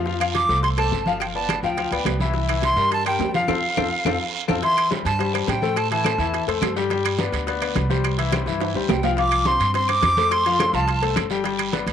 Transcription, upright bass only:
0, 0, Header, 1, 2, 480
1, 0, Start_track
1, 0, Key_signature, -1, "major"
1, 0, Tempo, 284630
1, 101, Time_signature, 4, 2, 24, 8
1, 20117, End_track
2, 0, Start_track
2, 0, Title_t, "Upright bass"
2, 0, Program_c, 0, 32
2, 0, Note_on_c, 0, 41, 87
2, 730, Note_off_c, 0, 41, 0
2, 828, Note_on_c, 0, 36, 94
2, 1500, Note_off_c, 0, 36, 0
2, 1541, Note_on_c, 0, 31, 82
2, 2659, Note_off_c, 0, 31, 0
2, 2746, Note_on_c, 0, 38, 85
2, 3198, Note_off_c, 0, 38, 0
2, 3227, Note_on_c, 0, 38, 68
2, 3449, Note_off_c, 0, 38, 0
2, 3459, Note_on_c, 0, 36, 86
2, 4580, Note_off_c, 0, 36, 0
2, 4660, Note_on_c, 0, 43, 90
2, 5341, Note_off_c, 0, 43, 0
2, 5380, Note_on_c, 0, 41, 83
2, 5837, Note_off_c, 0, 41, 0
2, 5866, Note_on_c, 0, 41, 94
2, 6053, Note_off_c, 0, 41, 0
2, 6362, Note_on_c, 0, 41, 89
2, 6541, Note_off_c, 0, 41, 0
2, 6831, Note_on_c, 0, 41, 85
2, 7016, Note_off_c, 0, 41, 0
2, 7561, Note_on_c, 0, 41, 90
2, 7742, Note_off_c, 0, 41, 0
2, 8517, Note_on_c, 0, 43, 94
2, 9191, Note_off_c, 0, 43, 0
2, 9236, Note_on_c, 0, 45, 85
2, 10349, Note_off_c, 0, 45, 0
2, 10426, Note_on_c, 0, 40, 100
2, 10881, Note_off_c, 0, 40, 0
2, 10912, Note_on_c, 0, 41, 71
2, 11137, Note_off_c, 0, 41, 0
2, 11147, Note_on_c, 0, 43, 89
2, 12263, Note_off_c, 0, 43, 0
2, 12349, Note_on_c, 0, 38, 93
2, 13024, Note_off_c, 0, 38, 0
2, 13077, Note_on_c, 0, 36, 99
2, 14185, Note_off_c, 0, 36, 0
2, 14264, Note_on_c, 0, 43, 88
2, 14717, Note_off_c, 0, 43, 0
2, 14748, Note_on_c, 0, 38, 70
2, 14975, Note_off_c, 0, 38, 0
2, 14989, Note_on_c, 0, 36, 87
2, 16098, Note_off_c, 0, 36, 0
2, 16190, Note_on_c, 0, 43, 86
2, 16859, Note_off_c, 0, 43, 0
2, 16903, Note_on_c, 0, 41, 96
2, 18012, Note_off_c, 0, 41, 0
2, 18098, Note_on_c, 0, 36, 92
2, 18770, Note_off_c, 0, 36, 0
2, 18819, Note_on_c, 0, 31, 88
2, 19927, Note_off_c, 0, 31, 0
2, 20009, Note_on_c, 0, 38, 98
2, 20117, Note_off_c, 0, 38, 0
2, 20117, End_track
0, 0, End_of_file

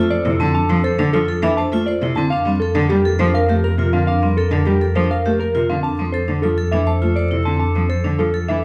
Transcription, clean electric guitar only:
0, 0, Header, 1, 2, 480
1, 0, Start_track
1, 0, Key_signature, -1, "major"
1, 0, Tempo, 588235
1, 446, Time_signature, 3, 2, 24, 8
1, 7054, End_track
2, 0, Start_track
2, 0, Title_t, "Clean electric guitar"
2, 0, Program_c, 0, 27
2, 85, Note_on_c, 0, 74, 105
2, 241, Note_off_c, 0, 74, 0
2, 329, Note_on_c, 0, 81, 70
2, 436, Note_off_c, 0, 81, 0
2, 446, Note_on_c, 0, 81, 107
2, 602, Note_off_c, 0, 81, 0
2, 684, Note_on_c, 0, 72, 83
2, 841, Note_off_c, 0, 72, 0
2, 923, Note_on_c, 0, 69, 87
2, 1081, Note_off_c, 0, 69, 0
2, 1168, Note_on_c, 0, 76, 93
2, 1282, Note_on_c, 0, 81, 85
2, 1322, Note_off_c, 0, 76, 0
2, 1440, Note_off_c, 0, 81, 0
2, 1520, Note_on_c, 0, 74, 94
2, 1680, Note_off_c, 0, 74, 0
2, 1761, Note_on_c, 0, 81, 78
2, 1875, Note_off_c, 0, 81, 0
2, 1879, Note_on_c, 0, 77, 106
2, 2039, Note_off_c, 0, 77, 0
2, 2120, Note_on_c, 0, 69, 81
2, 2280, Note_off_c, 0, 69, 0
2, 2362, Note_on_c, 0, 67, 91
2, 2521, Note_off_c, 0, 67, 0
2, 2607, Note_on_c, 0, 72, 93
2, 2727, Note_on_c, 0, 77, 83
2, 2762, Note_off_c, 0, 72, 0
2, 2882, Note_off_c, 0, 77, 0
2, 2971, Note_on_c, 0, 70, 93
2, 3123, Note_off_c, 0, 70, 0
2, 3207, Note_on_c, 0, 77, 65
2, 3313, Note_off_c, 0, 77, 0
2, 3323, Note_on_c, 0, 77, 88
2, 3481, Note_off_c, 0, 77, 0
2, 3567, Note_on_c, 0, 69, 78
2, 3722, Note_off_c, 0, 69, 0
2, 3807, Note_on_c, 0, 67, 89
2, 3962, Note_off_c, 0, 67, 0
2, 4046, Note_on_c, 0, 72, 88
2, 4168, Note_on_c, 0, 77, 72
2, 4202, Note_off_c, 0, 72, 0
2, 4323, Note_off_c, 0, 77, 0
2, 4402, Note_on_c, 0, 70, 90
2, 4560, Note_off_c, 0, 70, 0
2, 4647, Note_on_c, 0, 77, 63
2, 4755, Note_off_c, 0, 77, 0
2, 4758, Note_on_c, 0, 81, 80
2, 4919, Note_off_c, 0, 81, 0
2, 4998, Note_on_c, 0, 72, 68
2, 5159, Note_off_c, 0, 72, 0
2, 5240, Note_on_c, 0, 69, 75
2, 5400, Note_off_c, 0, 69, 0
2, 5480, Note_on_c, 0, 76, 77
2, 5607, Note_on_c, 0, 81, 65
2, 5640, Note_off_c, 0, 76, 0
2, 5762, Note_off_c, 0, 81, 0
2, 5840, Note_on_c, 0, 74, 75
2, 6000, Note_off_c, 0, 74, 0
2, 6081, Note_on_c, 0, 81, 64
2, 6187, Note_off_c, 0, 81, 0
2, 6197, Note_on_c, 0, 81, 82
2, 6359, Note_off_c, 0, 81, 0
2, 6441, Note_on_c, 0, 72, 56
2, 6600, Note_off_c, 0, 72, 0
2, 6684, Note_on_c, 0, 69, 70
2, 6841, Note_off_c, 0, 69, 0
2, 6924, Note_on_c, 0, 76, 81
2, 7054, Note_off_c, 0, 76, 0
2, 7054, End_track
0, 0, End_of_file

